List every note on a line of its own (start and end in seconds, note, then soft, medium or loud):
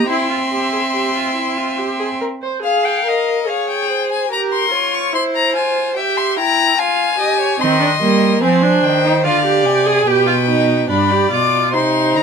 0.09 2.18 C4 medium
0.09 0.30 E4 medium
0.09 2.17 E5 medium
0.09 2.18 C6 medium
0.30 0.38 F4 medium
0.51 0.72 G4 soft
0.72 0.80 G#4 soft
0.93 1.14 G4 medium
1.15 1.35 F4 medium
1.35 1.58 E4 medium
1.57 1.79 F4 medium
1.78 1.99 G4 medium
1.99 2.07 G#4 soft
2.20 2.28 A#4 medium
2.42 2.62 C5 medium
2.63 3.02 G#4 medium
2.63 3.44 F5 medium
2.63 2.86 F5 medium
2.85 3.09 G5 medium
3.06 3.49 A#4 medium
3.06 3.50 D#5 medium
3.47 4.30 G#4 medium
3.47 3.91 C#5 medium
3.47 3.68 F5 medium
3.69 4.09 G5 medium
3.89 4.30 C5 medium
4.11 4.31 G#5 medium
4.30 4.70 G4 medium
4.30 4.73 A#4 medium
4.30 4.40 A#5 medium
4.52 4.96 C6 medium
4.71 5.14 F4 medium
4.71 5.14 C#5 medium
4.94 5.14 C#6 medium
5.12 5.56 E4 medium
5.12 5.98 C5 medium
5.12 5.23 C6 medium
5.35 5.55 A#5 medium
5.54 5.95 F4 medium
5.54 5.96 G#5 medium
5.96 6.38 G4 medium
5.96 6.38 E5 medium
5.96 6.18 G5 medium
6.17 6.38 C6 medium
6.37 6.77 E4 medium
6.37 6.80 G5 medium
6.37 6.80 A#5 medium
6.78 7.18 F4 medium
6.78 7.19 F5 medium
6.78 7.62 G#5 medium
7.18 7.59 G4 medium
7.18 7.40 D#5 medium
7.40 7.60 C#5 medium
7.60 7.99 D#3 medium
7.60 7.80 C4 medium
7.60 8.41 D#5 medium
7.60 8.42 C6 medium
7.80 7.88 D4 medium
8.01 8.42 G3 medium
8.01 8.43 A#3 medium
8.41 8.83 F3 medium
8.41 8.64 C4 medium
8.41 9.26 C5 medium
8.41 8.85 G#5 medium
8.62 9.03 D4 medium
8.84 9.26 D#3 medium
8.84 9.25 G5 medium
9.04 9.12 D#4 medium
9.24 9.67 D3 medium
9.24 9.44 F4 medium
9.24 10.06 D5 medium
9.24 9.67 F5 medium
9.45 9.87 G4 medium
9.65 10.06 C3 medium
9.65 10.08 G#5 medium
9.86 10.09 G#4 medium
10.06 10.88 B2 medium
10.06 10.26 G4 medium
10.06 10.88 B4 medium
10.06 10.89 G5 medium
10.27 10.35 F4 medium
10.47 10.88 D#4 medium
10.89 11.31 G2 medium
10.89 11.12 D4 medium
10.89 11.72 D5 medium
10.89 11.31 B5 medium
11.10 11.31 G4 medium
11.31 11.75 B2 medium
11.31 11.75 F4 medium
11.31 11.73 D6 medium
11.73 12.16 C3 medium
11.73 12.23 D#4 medium
11.73 12.23 C5 medium
11.73 12.17 C6 medium
12.15 12.23 D3 medium
12.15 12.23 A#5 medium